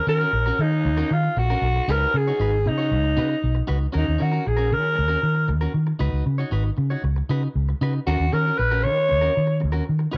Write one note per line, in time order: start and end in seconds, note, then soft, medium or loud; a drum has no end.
0.07 0.24 D#3 medium
0.07 0.20 C#4 medium
0.07 0.19 F#4 medium
0.07 0.18 A#4 medium
0.07 0.63 A#4 loud
0.20 0.31 C#4 medium
0.20 0.32 F#4 medium
0.20 0.32 A#4 medium
0.33 0.50 A#1 medium
0.33 muted clean electric guitar stroke soft
0.46 0.58 C#4 medium
0.46 0.59 F#4 medium
0.46 0.59 A#4 medium
0.59 0.87 D#3 loud
0.59 1.14 D#4 loud
0.59 muted clean electric guitar stroke soft
0.72 muted clean electric guitar stroke soft
0.85 1.02 D#2 loud
0.85 muted clean electric guitar stroke soft
0.97 1.10 C#4 medium
0.97 1.10 F#4 medium
0.97 1.11 A#4 medium
1.11 1.28 D#3 loud
1.11 1.40 F4 medium
1.11 muted clean electric guitar stroke soft
1.23 muted clean electric guitar stroke soft
1.37 1.53 A#1 loud
1.37 1.92 F#4 medium
1.37 muted clean electric guitar stroke soft
1.50 1.63 C#4 medium
1.50 1.63 F#4 medium
1.50 1.63 A#4 medium
1.62 1.79 B1 medium
1.62 muted clean electric guitar stroke soft
1.76 muted clean electric guitar stroke medium
1.88 2.05 C#2 loud
1.88 2.12 D#4 loud
1.88 2.12 F#4 loud
1.88 2.18 A#4 loud
1.88 2.13 B4 loud
2.14 2.31 C#3 loud
2.14 2.70 G#4 medium
2.14 muted clean electric guitar stroke soft
2.27 2.38 D#4 medium
2.27 2.40 F#4 medium
2.27 2.41 C#5 medium
2.40 2.68 G#1 loud
2.40 2.57 D#4 medium
2.40 2.52 F#4 medium
2.40 2.51 B4 medium
2.53 muted clean electric guitar stroke soft
2.66 2.93 C#3 medium
2.66 3.70 D#4 medium
2.66 muted clean electric guitar stroke medium
2.78 2.91 D#4 soft
2.78 2.91 F#4 soft
2.78 2.92 C#5 medium
2.91 3.19 C#2 loud
2.91 muted clean electric guitar stroke soft
3.04 muted clean electric guitar stroke soft
3.17 3.34 C#3 medium
3.17 3.35 D#4 medium
3.17 3.29 F#4 medium
3.17 3.28 B4 medium
3.30 muted clean electric guitar stroke soft
3.44 3.60 B1 loud
3.55 muted clean electric guitar stroke soft
3.67 3.86 C#2 medium
3.67 3.86 D#4 medium
3.67 3.79 F#4 medium
3.67 3.78 B4 medium
3.79 muted clean electric guitar stroke soft
3.92 4.03 D#2 loud
3.92 4.11 C#4 medium
3.92 4.06 F#4 medium
3.92 4.05 A#4 medium
3.97 4.23 D#4 loud
4.06 4.16 D#2 medium
4.06 muted clean electric guitar stroke soft
4.18 4.38 D#3 medium
4.18 4.32 C#4 medium
4.18 4.31 F#4 medium
4.18 4.49 F#4 medium
4.18 4.30 A#4 medium
4.31 4.44 C#4 medium
4.31 4.45 F#4 medium
4.31 4.45 A#4 medium
4.45 4.74 A#1 medium
4.45 4.75 G#4 loud
4.45 muted clean electric guitar stroke soft
4.56 4.70 C#4 medium
4.56 4.70 F#4 medium
4.56 4.71 A#4 medium
4.71 5.00 D#3 loud
4.71 5.50 A#4 loud
4.71 muted clean electric guitar stroke soft
4.83 muted clean electric guitar stroke medium
4.95 5.15 D#2 loud
4.95 muted clean electric guitar stroke soft
5.08 5.20 C#4 medium
5.08 5.20 F#4 medium
5.08 5.21 A#4 medium
5.21 5.50 D#3 medium
5.21 muted clean electric guitar stroke soft
5.35 muted clean electric guitar stroke soft
5.48 5.65 D#2 loud
5.48 muted clean electric guitar stroke soft
5.61 5.72 C#4 medium
5.61 5.73 F#4 medium
5.61 5.73 A#4 medium
5.73 5.91 D#3 medium
5.73 muted clean electric guitar stroke soft
5.87 muted clean electric guitar stroke medium
5.99 6.09 C#2 loud
5.99 6.24 D#4 medium
5.99 6.24 F#4 loud
5.99 6.24 B4 loud
6.12 6.21 C#2 medium
6.26 6.43 C#3 medium
6.26 muted clean electric guitar stroke soft
6.38 6.50 D#4 medium
6.38 6.51 F#4 medium
6.38 6.52 C#5 medium
6.51 6.69 G#1 medium
6.51 6.70 D#4 medium
6.51 6.65 F#4 medium
6.51 6.63 B4 medium
6.65 muted clean electric guitar stroke medium
6.77 6.95 C#3 medium
6.77 muted clean electric guitar stroke soft
6.90 7.03 D#4 soft
6.90 7.03 F#4 medium
6.90 7.04 C#5 medium
7.04 7.21 C#2 medium
7.04 muted clean electric guitar stroke medium
7.16 muted clean electric guitar stroke soft
7.29 7.46 C#3 loud
7.29 7.47 D#4 medium
7.29 7.43 F#4 medium
7.29 7.42 B4 medium
7.43 muted clean electric guitar stroke soft
7.55 7.72 C#2 loud
7.69 muted clean electric guitar stroke soft
7.81 7.98 C#3 loud
7.81 7.99 D#4 medium
7.81 7.94 F#4 medium
7.81 7.93 B4 medium
7.95 muted clean electric guitar stroke soft
8.07 8.15 D#2 medium
8.07 8.25 C#4 loud
8.07 8.34 F#4 medium
8.07 8.19 F#4 medium
8.07 8.18 A#4 loud
8.20 8.28 D#2 medium
8.20 muted clean electric guitar stroke soft
8.32 8.50 D#3 loud
8.32 8.46 C#4 medium
8.32 8.45 F#4 medium
8.32 8.60 A#4 loud
8.32 8.44 A#4 medium
8.46 8.57 C#4 medium
8.46 8.58 F#4 medium
8.46 8.58 A#4 medium
8.58 8.86 A#1 medium
8.58 8.85 B4 loud
8.58 muted clean electric guitar stroke soft
8.71 8.83 C#4 medium
8.71 8.84 F#4 medium
8.71 8.84 A#4 medium
8.83 9.13 D#3 medium
8.83 9.61 C#5 loud
8.83 muted clean electric guitar stroke soft
8.97 muted clean electric guitar stroke soft
9.09 9.28 D#2 medium
9.09 muted clean electric guitar stroke soft
9.21 9.33 C#4 medium
9.21 9.34 F#4 medium
9.21 9.35 A#4 medium
9.34 9.65 D#3 medium
9.34 muted clean electric guitar stroke soft
9.47 muted clean electric guitar stroke medium
9.60 9.80 D#2 loud
9.60 muted clean electric guitar stroke soft
9.72 9.84 C#4 medium
9.72 9.85 F#4 medium
9.72 9.86 A#4 medium
9.86 10.06 D#3 medium
9.86 muted clean electric guitar stroke soft
9.99 muted clean electric guitar stroke medium
10.11 10.17 C#2 loud
10.11 10.17 D#4 medium
10.11 10.17 F#4 loud
10.11 10.17 B4 loud